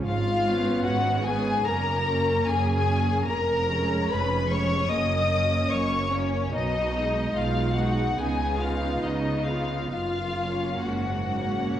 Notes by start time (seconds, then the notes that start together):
0.05 G#1 G#2 F4 F5
0.46 B3 C#4
0.85 G#1 G#2 F#4 F#5
1.24 B3 C#4 G#4 G#5
1.64 F#1 F#2 A#3 C#4 A#4 A#5
2.07 A#3 C#4
2.45 F#1 F#2 G#4 G#5
2.86 A#3 C#4
3.26 F1 F2 A#4 A#5
3.68 G#3 C#4
4.10 F1 F2 B4 B5
4.50 G#3 C#4 C#5 C#6
4.88 F#1 F#2 A#3 C#4 D#5 D#6
5.29 A#3 C#4
5.70 F#1 F#2 C#5 C#6
6.10 A#3 C#4 C#5
6.51 B1 B2 D#4 D#5
6.93 G#3 D#4
7.35 B1 B2 F4 F5
7.76 G#3 D#4 F#4 F#5
8.17 C#2 C#3 B3 D#4 G#4 G#5
8.61 B3 D#4 F4 F5
9.03 C#2 C#3 D#4 D#5
9.46 B3 D#4 F4 F5
9.91 F#1 F#2 F4 F5
10.38 A#3 C#4
10.82 F#1 G#2 F#4 F#5
11.29 A#3 C#4
11.72 F#1 A#2